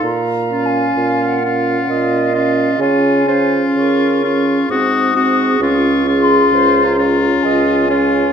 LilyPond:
<<
  \new Staff \with { instrumentName = "Flute" } { \time 3/4 \key des \major \tempo 4 = 65 \tuplet 3/2 { bes''4 aes''8~ aes''8 ges''4 } f''4 | aes''8 r8 des'''4 ees'''4 | \tuplet 3/2 { des'''4 c'''8~ c'''8 bes''4 } aes''4 | }
  \new Staff \with { instrumentName = "Clarinet" } { \time 3/4 \key des \major f''2 ees''4 | des''8 c''8 bes'8 r8 aes'4~ | aes'4 c''8 des''8 ees''8 des''8 | }
  \new Staff \with { instrumentName = "Oboe" } { \time 3/4 \key des \major r8 f'4 f'4 f'8 | f'8 f'4 f'8 ges'8 ges'8 | f'8 f'4 f'4 f'8 | }
  \new Staff \with { instrumentName = "French horn" } { \time 3/4 \key des \major r8 des'4 des'4 des'8 | des'8 des'4 des'8 c'8 c'8 | des'8 des'4 des'4 des'8 | }
  \new Staff \with { instrumentName = "Bassoon" } { \clef bass \time 3/4 \key des \major bes,4 bes,4 bes,4 | des4 des4 aes,4 | des,4 des,4 des,4 | }
>>